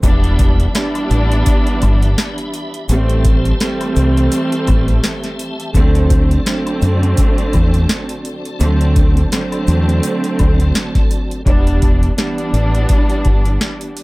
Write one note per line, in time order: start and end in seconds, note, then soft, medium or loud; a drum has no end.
0.03 0.66 E1 loud
0.03 0.70 E3 medium
0.03 0.70 G3 medium
0.03 0.70 B3 medium
0.03 2.86 D4 medium
0.03 0.70 D4 loud
0.03 5.71 G4 medium
0.03 5.71 E5 medium
0.03 2.86 B5 medium
0.03 kick loud
0.03 closed hi-hat medium
0.03 shaker medium
0.24 closed hi-hat medium
0.39 kick medium
0.39 closed hi-hat medium
0.39 shaker medium
0.60 closed hi-hat medium
0.73 2.74 E3 loud
0.73 2.74 G3 medium
0.73 2.74 B3 loud
0.73 2.74 D4 loud
0.73 snare loud
0.73 closed hi-hat medium
0.73 high woodblock medium
0.73 shaker medium
0.95 closed hi-hat medium
0.95 high woodblock medium
1.10 1.42 A1 medium
1.10 closed hi-hat medium
1.10 shaker medium
1.32 closed hi-hat medium
1.46 kick medium
1.46 closed hi-hat loud
1.46 shaker medium
1.67 closed hi-hat medium
1.82 2.14 G1 loud
1.82 kick medium
1.82 closed hi-hat medium
1.82 high woodblock medium
1.82 shaker medium
2.02 closed hi-hat medium
2.18 snare loud
2.18 closed hi-hat medium
2.18 shaker medium
2.38 closed hi-hat medium
2.54 closed hi-hat medium
2.54 shaker soft
2.74 closed hi-hat medium
2.89 3.52 A1 loud
2.89 3.56 E3 medium
2.89 3.56 G3 medium
2.89 3.56 A3 medium
2.89 11.43 C4 medium
2.89 3.56 C4 loud
2.89 11.43 A5 medium
2.89 closed hi-hat loud
2.89 shaker medium
3.09 closed hi-hat medium
3.25 kick medium
3.25 closed hi-hat medium
3.25 shaker medium
3.45 closed hi-hat medium
3.60 5.60 E3 loud
3.60 5.60 G3 medium
3.60 5.60 A3 loud
3.60 5.61 C4 loud
3.60 snare loud
3.60 closed hi-hat medium
3.60 high woodblock medium
3.60 shaker medium
3.81 closed hi-hat medium
3.81 high woodblock medium
3.96 4.28 C2 medium
3.96 closed hi-hat medium
3.96 shaker medium
4.17 closed hi-hat medium
4.32 closed hi-hat loud
4.32 shaker medium
4.52 closed hi-hat medium
4.67 4.99 A1 medium
4.67 kick medium
4.67 closed hi-hat medium
4.67 high woodblock medium
4.67 shaker medium
4.88 closed hi-hat medium
5.04 snare loud
5.04 closed hi-hat medium
5.04 shaker medium
5.24 snare soft
5.24 closed hi-hat medium
5.39 closed hi-hat medium
5.39 shaker soft
5.60 closed hi-hat medium
5.73 6.37 D2 loud
5.73 6.41 D3 loud
5.73 6.42 F#3 medium
5.73 6.42 A3 medium
5.73 6.42 C4 loud
5.73 11.41 F#4 medium
5.73 11.41 D5 medium
5.73 kick loud
5.73 closed hi-hat medium
5.73 shaker medium
5.95 closed hi-hat medium
6.10 kick loud
6.10 closed hi-hat medium
6.10 shaker medium
6.31 closed hi-hat medium
6.46 8.45 D3 loud
6.46 8.46 F#3 medium
6.46 8.46 A3 loud
6.46 8.46 C4 loud
6.46 snare loud
6.46 closed hi-hat medium
6.46 high woodblock medium
6.46 shaker medium
6.66 closed hi-hat medium
6.66 high woodblock medium
6.82 7.13 F#2 medium
6.82 closed hi-hat medium
6.82 shaker medium
7.03 closed hi-hat medium
7.17 kick loud
7.17 closed hi-hat loud
7.17 shaker medium
7.38 closed hi-hat medium
7.53 7.85 E2 loud
7.53 kick medium
7.53 closed hi-hat medium
7.53 high woodblock medium
7.53 shaker medium
7.74 closed hi-hat medium
7.89 snare loud
7.89 closed hi-hat medium
7.89 shaker medium
8.09 closed hi-hat medium
8.25 closed hi-hat medium
8.25 shaker soft
8.45 closed hi-hat medium
8.60 9.23 D2 loud
8.60 9.27 D3 loud
8.60 9.27 F#3 medium
8.60 9.27 A3 medium
8.60 9.27 C4 loud
8.60 closed hi-hat medium
8.60 shaker medium
8.81 closed hi-hat medium
8.96 kick medium
8.96 closed hi-hat medium
8.96 shaker medium
9.17 closed hi-hat medium
9.31 11.31 D3 loud
9.31 11.31 F#3 loud
9.31 11.31 A3 medium
9.31 11.31 C4 loud
9.31 snare loud
9.31 closed hi-hat medium
9.31 high woodblock medium
9.31 shaker medium
9.52 closed hi-hat medium
9.52 high woodblock medium
9.67 9.99 E2 loud
9.67 closed hi-hat medium
9.67 shaker medium
9.89 closed hi-hat medium
10.03 closed hi-hat loud
10.03 shaker medium
10.24 closed hi-hat medium
10.39 10.71 D2 loud
10.39 kick medium
10.39 closed hi-hat medium
10.39 high woodblock medium
10.39 shaker medium
10.60 closed hi-hat medium
10.75 snare loud
10.75 closed hi-hat medium
10.75 shaker medium
10.95 kick medium
10.95 snare soft
10.95 closed hi-hat medium
11.11 closed hi-hat medium
11.11 shaker soft
11.31 closed hi-hat medium
11.46 12.09 E1 loud
11.46 12.13 E3 medium
11.46 12.13 G3 medium
11.46 12.13 B3 medium
11.46 12.13 D4 loud
11.46 kick loud
11.46 closed hi-hat medium
11.67 closed hi-hat medium
11.82 kick medium
11.82 closed hi-hat medium
12.03 closed hi-hat medium
12.17 14.03 E3 loud
12.17 14.03 G3 loud
12.17 14.03 B3 loud
12.17 14.03 D4 loud
12.17 snare loud
12.17 closed hi-hat medium
12.38 closed hi-hat medium
12.53 12.85 A1 medium
12.53 closed hi-hat medium
12.75 closed hi-hat medium
12.89 kick medium
12.89 closed hi-hat loud
13.10 closed hi-hat medium
13.25 13.57 G1 medium
13.25 kick medium
13.25 closed hi-hat medium
13.45 closed hi-hat medium
13.61 snare loud
13.61 closed hi-hat medium
13.81 closed hi-hat medium
13.97 closed hi-hat medium